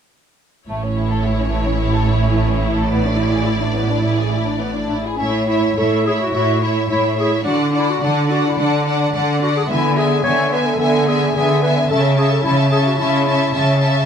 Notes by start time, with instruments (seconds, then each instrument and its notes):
0.68 double bass section A1, cello section A2, violin section A3 C#5, viola section E4
0.84 violin section C#4
0.97 violin section E4
1.11 violin section A4
1.25 violin section E4
1.39 violin section C#4
1.53 violin section A3
1.66 violin section C#4
1.80 violin section E4
1.95 violin section A4
2.07 violin section E4
2.22 violin section C#4
2.35 violin section A3
2.47 violin section C#4
2.62 violin section E4
2.76 violin section A4
2.91 violin section B3 D5
3.05 violin section D4
3.19 violin section E4
3.33 violin section G#4
3.46 violin section E4
3.60 violin section D4
3.74 violin section B3
3.89 violin section D4
4.03 violin section E4
4.18 violin section G#4
4.31 violin section E4
4.46 violin section D4
4.60 violin section B3
4.74 violin section D4
4.89 clarinet D4, violin section E4
5.04 clarinet E4, violin section G#4
5.17 cello section A2, clarinet C#4, viola section E4, violin section C#5 E5
5.47 clarinet E4, viola section E4, violin section C#5 E5
5.77 cello section A2, viola section E4, clarinet A4, violin section C#5 E5
6.05 viola section E4, clarinet G#4, violin section C#5 E5
6.22 clarinet F#4
6.33 cello section A2, viola section E4, clarinet F#4, violin section C#5 E5
6.62 viola section E4, clarinet E4, violin section C#5 E5
6.89 cello section A2, viola section E4, clarinet E4, violin section C#5 E5
7.17 viola section E4, clarinet G#4, violin section C#5 E5
7.45 cello section D3, viola section D4, clarinet F#4, violin section D5 F#5
7.74 viola section D4, clarinet E4, violin section D5 F#5
7.90 clarinet F#4
8.01 cello section D3, viola section D4, clarinet D4, violin section D5 F#5
8.29 viola section D4, clarinet F#4, violin section D5 F#5
8.47 clarinet E4
8.58 cello section D3, viola section D4, clarinet D4, violin section D5 F#5
8.86 viola section D4, violin section D5 F#5
9.14 cello section D3, viola section D4, violin section D5 F#5
9.41 viola section D4, clarinet F#4, violin section D5 F#5
9.56 clarinet G#4
9.69 cello section D3, viola section B3, clarinet E4, violin section E5 G#5
9.96 viola section B3, clarinet G#4, violin section E5 G#5
10.24 cello section D3, viola section B3, clarinet C#5, violin section E5 G#5
10.52 viola section B3, clarinet B4, violin section E5 G#5
10.66 clarinet A4
10.79 cello section D3, viola section B3, clarinet A4, violin section E5 G#5
11.07 viola section B3, clarinet G#4, violin section E5 G#5
11.35 cello section D3, viola section B3, clarinet G#4, violin section E5 G#5
11.62 viola section B3, clarinet B4, violin section E5 G#5
11.90 cello section C#3, viola section C#4, clarinet A4, violin section E5 A5
12.17 viola section C#4, clarinet G#4, violin section E5 A5
12.32 clarinet A4
12.43 cello section C#3, viola section C#4, clarinet E4, violin section E5 A5
12.71 viola section C#4, clarinet G#4, violin section E5 A5
12.86 clarinet F#4
12.98 cello section C#3, viola section C#4, clarinet E4, violin section E5 A5
13.27 viola section C#4, violin section E5 A5
13.53 cello section C#3, viola section C#4, violin section E5 A5
13.81 viola section C#4, violin section E5 A5